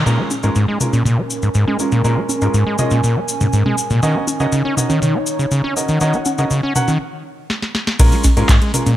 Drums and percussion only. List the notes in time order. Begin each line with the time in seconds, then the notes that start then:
0.06 crash, cabasa
0.30 high conga, cabasa
0.43 cabasa
0.55 cabasa
0.80 mid tom, cabasa
0.93 high conga, cabasa
1.05 mid tom, cabasa
1.30 cabasa
1.42 cabasa
1.54 cabasa
1.67 high conga
1.79 cabasa
1.92 cabasa
2.05 cabasa
2.29 high conga, cabasa
2.41 cabasa
2.54 cabasa
2.78 mid tom, cabasa
2.90 high conga, cabasa
3.03 cabasa
3.28 cabasa
3.41 mid tom, cabasa
3.53 cabasa
3.66 mid tom, high conga
3.78 cabasa
3.90 mid tom, cabasa
4.03 cabasa
4.27 high conga, cabasa
4.40 cabasa
4.52 cabasa
4.77 mid tom, cabasa
4.90 high conga, cabasa
5.02 mid tom, cabasa
5.26 cabasa
5.39 cabasa
5.51 cabasa
5.64 high conga
5.77 cabasa
5.88 cabasa
6.00 cabasa
6.13 cabasa
6.25 high conga, cabasa
6.38 cabasa
6.50 cabasa
6.76 mid tom, cabasa
6.88 high conga, cabasa
7.50 snare
7.62 snare
7.75 snare
7.87 snare
7.99 kick, closed hi-hat, crash, ride, cabasa
8.12 closed hi-hat, cabasa
8.24 kick, snare, open hi-hat, high conga, cabasa
8.37 closed hi-hat, cabasa
8.49 kick, clap, closed hi-hat, ride, cabasa
8.62 closed hi-hat
8.74 open hi-hat, mid tom, cabasa
8.86 closed hi-hat, high conga, cabasa